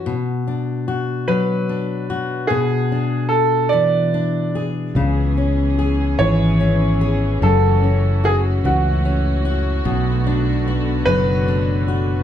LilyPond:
<<
  \new Staff \with { instrumentName = "Grand piano" } { \time 6/8 \key b \dorian \tempo 4. = 49 r4. b'4. | gis'4 a'8 d''4 r8 | r4. cis''4. | a'4 gis'8 fis'4 r8 |
r4. b'4. | }
  \new Staff \with { instrumentName = "Steel-string acoustic guitar" } { \time 6/8 \key b \dorian b,8 d'8 fis'8 fis8 d'8 fis'8 | b,8 d'4 e8 d'8 gis'8 | cis8 cis'8 gis'8 e8 cis'8 gis'8 | fis,8 cis'8 fis'8 e8 cis'8 fis'8 |
b,8 d'8 fis'8 fis8 d'8 fis'8 | }
  \new Staff \with { instrumentName = "String section" } { \time 6/8 \key b \dorian << { r2. | r2. | <b gis'>2. | <a fis'>2.~ |
<a fis'>2. | } \\ { r2. | r2. | <e cis'>2.~ | <e cis'>2. |
<d b>2. | } >> }
  \new Staff \with { instrumentName = "Fretless electric bass" } { \clef bass \time 6/8 \key b \dorian r2. | r2. | cis,4. gis,,4. | fis,,4. cis,4. |
b,,4. fis,,4. | }
>>